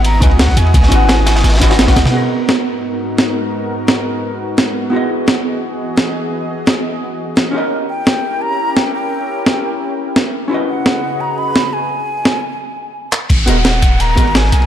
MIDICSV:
0, 0, Header, 1, 7, 480
1, 0, Start_track
1, 0, Key_signature, 5, "minor"
1, 0, Tempo, 348837
1, 1022, Time_signature, 4, 2, 24, 8
1, 20174, End_track
2, 0, Start_track
2, 0, Title_t, "Flute"
2, 0, Program_c, 0, 73
2, 67, Note_on_c, 0, 82, 114
2, 306, Note_on_c, 0, 80, 102
2, 327, Note_off_c, 0, 82, 0
2, 544, Note_on_c, 0, 78, 98
2, 565, Note_off_c, 0, 80, 0
2, 787, Note_on_c, 0, 80, 110
2, 808, Note_off_c, 0, 78, 0
2, 2465, Note_off_c, 0, 80, 0
2, 10861, Note_on_c, 0, 79, 98
2, 11580, Note_on_c, 0, 82, 114
2, 11601, Note_off_c, 0, 79, 0
2, 12061, Note_on_c, 0, 79, 98
2, 12082, Note_off_c, 0, 82, 0
2, 12298, Note_off_c, 0, 79, 0
2, 12306, Note_on_c, 0, 79, 102
2, 13689, Note_off_c, 0, 79, 0
2, 14702, Note_on_c, 0, 78, 88
2, 15418, Note_on_c, 0, 82, 100
2, 15439, Note_off_c, 0, 78, 0
2, 15660, Note_on_c, 0, 83, 109
2, 15681, Note_off_c, 0, 82, 0
2, 16140, Note_on_c, 0, 80, 104
2, 16161, Note_off_c, 0, 83, 0
2, 17821, Note_off_c, 0, 80, 0
2, 18550, Note_on_c, 0, 78, 98
2, 19271, Note_on_c, 0, 82, 117
2, 19292, Note_off_c, 0, 78, 0
2, 19752, Note_on_c, 0, 80, 103
2, 19773, Note_off_c, 0, 82, 0
2, 19983, Note_off_c, 0, 80, 0
2, 19991, Note_on_c, 0, 80, 107
2, 20174, Note_off_c, 0, 80, 0
2, 20174, End_track
3, 0, Start_track
3, 0, Title_t, "Analog synth pad"
3, 0, Program_c, 1, 89
3, 0, Note_on_c, 1, 59, 90
3, 0, Note_on_c, 1, 64, 83
3, 0, Note_on_c, 1, 66, 101
3, 0, Note_on_c, 1, 75, 81
3, 2888, Note_off_c, 1, 64, 0
3, 2901, Note_off_c, 1, 59, 0
3, 2902, Note_off_c, 1, 66, 0
3, 2903, Note_off_c, 1, 75, 0
3, 2945, Note_on_c, 1, 59, 80
3, 2945, Note_on_c, 1, 63, 77
3, 2945, Note_on_c, 1, 66, 76
3, 2945, Note_on_c, 1, 70, 92
3, 2946, Note_on_c, 1, 44, 81
3, 6745, Note_off_c, 1, 63, 0
3, 6745, Note_off_c, 1, 70, 0
3, 6746, Note_off_c, 1, 44, 0
3, 6787, Note_on_c, 1, 75, 77
3, 6788, Note_on_c, 1, 52, 86
3, 6789, Note_on_c, 1, 68, 96
3, 10329, Note_off_c, 1, 59, 0
3, 10329, Note_off_c, 1, 66, 0
3, 10349, Note_off_c, 1, 52, 0
3, 10349, Note_off_c, 1, 68, 0
3, 10349, Note_off_c, 1, 75, 0
3, 10389, Note_on_c, 1, 61, 75
3, 10391, Note_on_c, 1, 64, 77
3, 10391, Note_on_c, 1, 70, 91
3, 10393, Note_on_c, 1, 67, 77
3, 14425, Note_off_c, 1, 61, 0
3, 14426, Note_off_c, 1, 70, 0
3, 14427, Note_off_c, 1, 67, 0
3, 14465, Note_on_c, 1, 66, 81
3, 14467, Note_on_c, 1, 68, 80
3, 14467, Note_on_c, 1, 71, 78
3, 14468, Note_on_c, 1, 75, 92
3, 14469, Note_on_c, 1, 49, 83
3, 17291, Note_off_c, 1, 64, 0
3, 17315, Note_off_c, 1, 66, 0
3, 17316, Note_off_c, 1, 68, 0
3, 17316, Note_off_c, 1, 71, 0
3, 17316, Note_off_c, 1, 75, 0
3, 17317, Note_off_c, 1, 49, 0
3, 18303, Note_on_c, 1, 59, 89
3, 18304, Note_on_c, 1, 66, 81
3, 18304, Note_on_c, 1, 70, 98
3, 18305, Note_on_c, 1, 75, 78
3, 20174, Note_off_c, 1, 59, 0
3, 20174, Note_off_c, 1, 66, 0
3, 20174, Note_off_c, 1, 70, 0
3, 20174, Note_off_c, 1, 75, 0
3, 20174, End_track
4, 0, Start_track
4, 0, Title_t, "Hollow-body jazz guitar"
4, 0, Program_c, 2, 26
4, 280, Note_on_c, 2, 61, 85
4, 290, Note_on_c, 2, 64, 72
4, 303, Note_on_c, 2, 66, 77
4, 312, Note_on_c, 2, 71, 75
4, 323, Note_on_c, 2, 75, 91
4, 402, Note_off_c, 2, 61, 0
4, 407, Note_off_c, 2, 64, 0
4, 413, Note_off_c, 2, 66, 0
4, 418, Note_off_c, 2, 71, 0
4, 424, Note_off_c, 2, 75, 0
4, 1217, Note_on_c, 2, 61, 85
4, 1241, Note_on_c, 2, 64, 82
4, 1261, Note_on_c, 2, 66, 77
4, 1283, Note_on_c, 2, 71, 76
4, 1306, Note_on_c, 2, 78, 95
4, 2172, Note_off_c, 2, 61, 0
4, 2184, Note_off_c, 2, 64, 0
4, 2194, Note_off_c, 2, 66, 0
4, 2198, Note_on_c, 2, 61, 107
4, 2204, Note_off_c, 2, 78, 0
4, 2205, Note_off_c, 2, 71, 0
4, 2210, Note_on_c, 2, 64, 100
4, 2219, Note_on_c, 2, 66, 98
4, 2232, Note_on_c, 2, 71, 98
4, 2241, Note_on_c, 2, 75, 122
4, 2304, Note_off_c, 2, 61, 0
4, 2314, Note_off_c, 2, 64, 0
4, 2321, Note_on_c, 2, 61, 86
4, 2327, Note_off_c, 2, 66, 0
4, 2331, Note_on_c, 2, 64, 81
4, 2334, Note_off_c, 2, 71, 0
4, 2338, Note_off_c, 2, 75, 0
4, 2343, Note_on_c, 2, 66, 83
4, 2353, Note_on_c, 2, 71, 78
4, 2365, Note_on_c, 2, 75, 100
4, 2544, Note_off_c, 2, 61, 0
4, 2549, Note_off_c, 2, 64, 0
4, 2555, Note_off_c, 2, 66, 0
4, 2560, Note_off_c, 2, 71, 0
4, 2564, Note_on_c, 2, 61, 103
4, 2566, Note_off_c, 2, 75, 0
4, 2575, Note_on_c, 2, 64, 87
4, 2584, Note_on_c, 2, 66, 90
4, 2598, Note_on_c, 2, 71, 91
4, 2607, Note_on_c, 2, 78, 110
4, 2677, Note_off_c, 2, 61, 0
4, 2682, Note_off_c, 2, 64, 0
4, 2687, Note_off_c, 2, 66, 0
4, 2693, Note_off_c, 2, 71, 0
4, 2698, Note_off_c, 2, 78, 0
4, 2895, Note_on_c, 2, 59, 71
4, 2917, Note_on_c, 2, 66, 65
4, 2939, Note_on_c, 2, 68, 67
4, 2959, Note_on_c, 2, 70, 64
4, 2982, Note_on_c, 2, 75, 79
4, 6724, Note_off_c, 2, 59, 0
4, 6741, Note_on_c, 2, 59, 72
4, 6742, Note_off_c, 2, 66, 0
4, 6753, Note_off_c, 2, 68, 0
4, 6762, Note_on_c, 2, 64, 64
4, 6763, Note_off_c, 2, 70, 0
4, 6775, Note_off_c, 2, 75, 0
4, 6784, Note_on_c, 2, 66, 67
4, 6805, Note_on_c, 2, 68, 62
4, 6826, Note_on_c, 2, 75, 79
4, 10333, Note_off_c, 2, 64, 0
4, 10334, Note_off_c, 2, 59, 0
4, 10338, Note_on_c, 2, 61, 74
4, 10354, Note_off_c, 2, 66, 0
4, 10359, Note_on_c, 2, 64, 66
4, 10366, Note_off_c, 2, 68, 0
4, 10376, Note_off_c, 2, 64, 0
4, 10377, Note_off_c, 2, 75, 0
4, 10381, Note_on_c, 2, 67, 69
4, 10402, Note_on_c, 2, 70, 70
4, 10425, Note_on_c, 2, 75, 86
4, 14173, Note_off_c, 2, 61, 0
4, 14194, Note_off_c, 2, 67, 0
4, 14205, Note_off_c, 2, 70, 0
4, 14216, Note_off_c, 2, 75, 0
4, 14418, Note_on_c, 2, 61, 74
4, 14440, Note_on_c, 2, 64, 68
4, 14461, Note_on_c, 2, 66, 67
4, 14484, Note_on_c, 2, 71, 64
4, 14505, Note_on_c, 2, 75, 79
4, 17320, Note_off_c, 2, 61, 0
4, 17331, Note_off_c, 2, 64, 0
4, 17342, Note_off_c, 2, 66, 0
4, 17353, Note_off_c, 2, 71, 0
4, 17363, Note_off_c, 2, 75, 0
4, 18520, Note_on_c, 2, 59, 98
4, 18531, Note_on_c, 2, 66, 91
4, 18542, Note_on_c, 2, 68, 89
4, 18551, Note_on_c, 2, 70, 88
4, 18564, Note_on_c, 2, 75, 103
4, 18642, Note_off_c, 2, 59, 0
4, 18647, Note_off_c, 2, 66, 0
4, 18653, Note_off_c, 2, 68, 0
4, 18657, Note_off_c, 2, 70, 0
4, 18664, Note_off_c, 2, 75, 0
4, 19480, Note_on_c, 2, 59, 84
4, 19492, Note_on_c, 2, 66, 74
4, 19502, Note_on_c, 2, 68, 70
4, 19514, Note_on_c, 2, 70, 73
4, 19524, Note_on_c, 2, 75, 90
4, 19602, Note_off_c, 2, 59, 0
4, 19608, Note_off_c, 2, 66, 0
4, 19613, Note_off_c, 2, 68, 0
4, 19619, Note_off_c, 2, 70, 0
4, 19624, Note_off_c, 2, 75, 0
4, 20174, End_track
5, 0, Start_track
5, 0, Title_t, "808-style bass"
5, 0, Program_c, 3, 38
5, 0, Note_on_c, 3, 32, 91
5, 284, Note_off_c, 3, 32, 0
5, 299, Note_on_c, 3, 37, 102
5, 762, Note_off_c, 3, 37, 0
5, 779, Note_on_c, 3, 40, 88
5, 997, Note_off_c, 3, 40, 0
5, 1019, Note_on_c, 3, 37, 108
5, 1237, Note_off_c, 3, 37, 0
5, 1258, Note_on_c, 3, 32, 91
5, 1972, Note_off_c, 3, 32, 0
5, 1980, Note_on_c, 3, 32, 91
5, 2683, Note_off_c, 3, 32, 0
5, 2699, Note_on_c, 3, 37, 94
5, 2814, Note_off_c, 3, 37, 0
5, 18299, Note_on_c, 3, 32, 104
5, 18518, Note_off_c, 3, 32, 0
5, 18542, Note_on_c, 3, 27, 88
5, 19484, Note_off_c, 3, 27, 0
5, 19502, Note_on_c, 3, 32, 107
5, 19964, Note_off_c, 3, 32, 0
5, 19982, Note_on_c, 3, 35, 82
5, 20174, Note_off_c, 3, 35, 0
5, 20174, End_track
6, 0, Start_track
6, 0, Title_t, "Downlifter"
6, 0, Program_c, 4, 103
6, 18301, Note_on_c, 4, 60, 78
6, 20174, Note_off_c, 4, 60, 0
6, 20174, End_track
7, 0, Start_track
7, 0, Title_t, "Drums"
7, 61, Note_on_c, 9, 51, 85
7, 62, Note_on_c, 9, 42, 73
7, 198, Note_off_c, 9, 51, 0
7, 200, Note_off_c, 9, 42, 0
7, 299, Note_on_c, 9, 36, 100
7, 302, Note_on_c, 9, 42, 97
7, 316, Note_on_c, 9, 51, 72
7, 428, Note_off_c, 9, 51, 0
7, 428, Note_on_c, 9, 51, 41
7, 437, Note_off_c, 9, 36, 0
7, 440, Note_off_c, 9, 42, 0
7, 541, Note_off_c, 9, 51, 0
7, 541, Note_on_c, 9, 51, 92
7, 543, Note_on_c, 9, 38, 115
7, 543, Note_on_c, 9, 42, 74
7, 546, Note_off_c, 9, 38, 0
7, 546, Note_on_c, 9, 38, 116
7, 666, Note_on_c, 9, 36, 59
7, 675, Note_off_c, 9, 38, 0
7, 675, Note_on_c, 9, 38, 45
7, 679, Note_off_c, 9, 51, 0
7, 680, Note_off_c, 9, 42, 0
7, 781, Note_on_c, 9, 51, 66
7, 783, Note_on_c, 9, 42, 94
7, 803, Note_off_c, 9, 36, 0
7, 813, Note_off_c, 9, 38, 0
7, 913, Note_off_c, 9, 51, 0
7, 913, Note_on_c, 9, 51, 43
7, 920, Note_off_c, 9, 42, 0
7, 1020, Note_on_c, 9, 36, 127
7, 1022, Note_on_c, 9, 42, 85
7, 1024, Note_off_c, 9, 51, 0
7, 1024, Note_on_c, 9, 51, 97
7, 1141, Note_on_c, 9, 38, 56
7, 1158, Note_off_c, 9, 36, 0
7, 1160, Note_off_c, 9, 42, 0
7, 1162, Note_off_c, 9, 51, 0
7, 1256, Note_on_c, 9, 51, 68
7, 1263, Note_on_c, 9, 42, 94
7, 1279, Note_off_c, 9, 38, 0
7, 1394, Note_off_c, 9, 51, 0
7, 1400, Note_off_c, 9, 42, 0
7, 1495, Note_on_c, 9, 38, 111
7, 1503, Note_on_c, 9, 51, 102
7, 1504, Note_off_c, 9, 38, 0
7, 1504, Note_on_c, 9, 38, 118
7, 1504, Note_on_c, 9, 42, 83
7, 1640, Note_off_c, 9, 51, 0
7, 1641, Note_off_c, 9, 38, 0
7, 1641, Note_off_c, 9, 42, 0
7, 1740, Note_on_c, 9, 38, 110
7, 1740, Note_on_c, 9, 51, 85
7, 1744, Note_on_c, 9, 42, 99
7, 1868, Note_off_c, 9, 38, 0
7, 1868, Note_on_c, 9, 38, 106
7, 1875, Note_off_c, 9, 51, 0
7, 1875, Note_on_c, 9, 51, 94
7, 1881, Note_off_c, 9, 42, 0
7, 1977, Note_off_c, 9, 38, 0
7, 1977, Note_on_c, 9, 38, 93
7, 1984, Note_on_c, 9, 42, 77
7, 1985, Note_off_c, 9, 51, 0
7, 1985, Note_on_c, 9, 51, 70
7, 2045, Note_off_c, 9, 38, 0
7, 2045, Note_on_c, 9, 38, 93
7, 2055, Note_off_c, 9, 51, 0
7, 2055, Note_on_c, 9, 51, 73
7, 2111, Note_off_c, 9, 51, 0
7, 2111, Note_on_c, 9, 51, 65
7, 2116, Note_off_c, 9, 38, 0
7, 2116, Note_on_c, 9, 38, 88
7, 2122, Note_off_c, 9, 42, 0
7, 2167, Note_off_c, 9, 38, 0
7, 2167, Note_off_c, 9, 51, 0
7, 2167, Note_on_c, 9, 38, 102
7, 2167, Note_on_c, 9, 51, 67
7, 2221, Note_off_c, 9, 51, 0
7, 2221, Note_on_c, 9, 36, 57
7, 2221, Note_on_c, 9, 51, 81
7, 2222, Note_off_c, 9, 38, 0
7, 2222, Note_on_c, 9, 38, 100
7, 2223, Note_on_c, 9, 42, 100
7, 2349, Note_off_c, 9, 51, 0
7, 2349, Note_on_c, 9, 51, 81
7, 2351, Note_off_c, 9, 38, 0
7, 2351, Note_on_c, 9, 38, 122
7, 2358, Note_off_c, 9, 36, 0
7, 2360, Note_off_c, 9, 42, 0
7, 2460, Note_off_c, 9, 38, 0
7, 2460, Note_on_c, 9, 38, 104
7, 2463, Note_off_c, 9, 38, 0
7, 2463, Note_on_c, 9, 38, 118
7, 2463, Note_on_c, 9, 42, 82
7, 2466, Note_off_c, 9, 51, 0
7, 2466, Note_on_c, 9, 51, 79
7, 2585, Note_off_c, 9, 38, 0
7, 2585, Note_on_c, 9, 38, 105
7, 2586, Note_on_c, 9, 36, 103
7, 2589, Note_off_c, 9, 38, 0
7, 2589, Note_off_c, 9, 51, 0
7, 2589, Note_on_c, 9, 38, 51
7, 2589, Note_on_c, 9, 51, 88
7, 2601, Note_off_c, 9, 42, 0
7, 2700, Note_off_c, 9, 51, 0
7, 2700, Note_on_c, 9, 51, 80
7, 2704, Note_off_c, 9, 38, 0
7, 2704, Note_on_c, 9, 38, 80
7, 2704, Note_on_c, 9, 42, 97
7, 2705, Note_off_c, 9, 38, 0
7, 2705, Note_on_c, 9, 38, 104
7, 2724, Note_off_c, 9, 36, 0
7, 2826, Note_off_c, 9, 38, 0
7, 2826, Note_on_c, 9, 38, 104
7, 2828, Note_on_c, 9, 45, 85
7, 2837, Note_off_c, 9, 51, 0
7, 2840, Note_on_c, 9, 51, 88
7, 2841, Note_off_c, 9, 42, 0
7, 2964, Note_off_c, 9, 38, 0
7, 2966, Note_off_c, 9, 45, 0
7, 2977, Note_off_c, 9, 51, 0
7, 3423, Note_on_c, 9, 38, 116
7, 3560, Note_off_c, 9, 38, 0
7, 4382, Note_on_c, 9, 38, 107
7, 4519, Note_off_c, 9, 38, 0
7, 5343, Note_on_c, 9, 38, 112
7, 5480, Note_off_c, 9, 38, 0
7, 6302, Note_on_c, 9, 38, 111
7, 6440, Note_off_c, 9, 38, 0
7, 7262, Note_on_c, 9, 38, 117
7, 7400, Note_off_c, 9, 38, 0
7, 8222, Note_on_c, 9, 38, 112
7, 8360, Note_off_c, 9, 38, 0
7, 9181, Note_on_c, 9, 38, 118
7, 9319, Note_off_c, 9, 38, 0
7, 10141, Note_on_c, 9, 38, 110
7, 10279, Note_off_c, 9, 38, 0
7, 11101, Note_on_c, 9, 38, 116
7, 11239, Note_off_c, 9, 38, 0
7, 12062, Note_on_c, 9, 38, 112
7, 12199, Note_off_c, 9, 38, 0
7, 13023, Note_on_c, 9, 38, 109
7, 13160, Note_off_c, 9, 38, 0
7, 13982, Note_on_c, 9, 38, 110
7, 14120, Note_off_c, 9, 38, 0
7, 14941, Note_on_c, 9, 38, 108
7, 15079, Note_off_c, 9, 38, 0
7, 15901, Note_on_c, 9, 38, 108
7, 16039, Note_off_c, 9, 38, 0
7, 16861, Note_on_c, 9, 38, 114
7, 16999, Note_off_c, 9, 38, 0
7, 18062, Note_on_c, 9, 39, 90
7, 18199, Note_off_c, 9, 39, 0
7, 18292, Note_on_c, 9, 51, 87
7, 18301, Note_on_c, 9, 36, 124
7, 18302, Note_on_c, 9, 42, 84
7, 18302, Note_on_c, 9, 49, 106
7, 18429, Note_off_c, 9, 51, 0
7, 18438, Note_off_c, 9, 36, 0
7, 18440, Note_off_c, 9, 42, 0
7, 18440, Note_off_c, 9, 49, 0
7, 18543, Note_on_c, 9, 42, 99
7, 18551, Note_on_c, 9, 51, 66
7, 18680, Note_off_c, 9, 42, 0
7, 18688, Note_off_c, 9, 51, 0
7, 18778, Note_on_c, 9, 51, 81
7, 18779, Note_on_c, 9, 38, 108
7, 18781, Note_off_c, 9, 38, 0
7, 18781, Note_on_c, 9, 38, 121
7, 18781, Note_on_c, 9, 42, 85
7, 18915, Note_off_c, 9, 51, 0
7, 18919, Note_off_c, 9, 38, 0
7, 18919, Note_off_c, 9, 42, 0
7, 19019, Note_on_c, 9, 51, 68
7, 19022, Note_on_c, 9, 36, 103
7, 19022, Note_on_c, 9, 42, 98
7, 19157, Note_off_c, 9, 51, 0
7, 19159, Note_off_c, 9, 36, 0
7, 19160, Note_off_c, 9, 42, 0
7, 19262, Note_on_c, 9, 51, 85
7, 19264, Note_on_c, 9, 42, 80
7, 19399, Note_off_c, 9, 51, 0
7, 19401, Note_off_c, 9, 42, 0
7, 19502, Note_on_c, 9, 36, 61
7, 19506, Note_on_c, 9, 42, 104
7, 19508, Note_on_c, 9, 51, 68
7, 19637, Note_off_c, 9, 51, 0
7, 19637, Note_on_c, 9, 51, 42
7, 19640, Note_off_c, 9, 36, 0
7, 19643, Note_off_c, 9, 42, 0
7, 19742, Note_off_c, 9, 51, 0
7, 19742, Note_on_c, 9, 51, 89
7, 19746, Note_on_c, 9, 38, 123
7, 19746, Note_on_c, 9, 42, 78
7, 19748, Note_off_c, 9, 38, 0
7, 19748, Note_on_c, 9, 38, 117
7, 19866, Note_off_c, 9, 38, 0
7, 19866, Note_on_c, 9, 38, 47
7, 19880, Note_off_c, 9, 51, 0
7, 19883, Note_off_c, 9, 42, 0
7, 19982, Note_on_c, 9, 51, 62
7, 19985, Note_on_c, 9, 42, 101
7, 20004, Note_off_c, 9, 38, 0
7, 20113, Note_off_c, 9, 51, 0
7, 20113, Note_on_c, 9, 51, 47
7, 20122, Note_off_c, 9, 42, 0
7, 20174, Note_off_c, 9, 51, 0
7, 20174, End_track
0, 0, End_of_file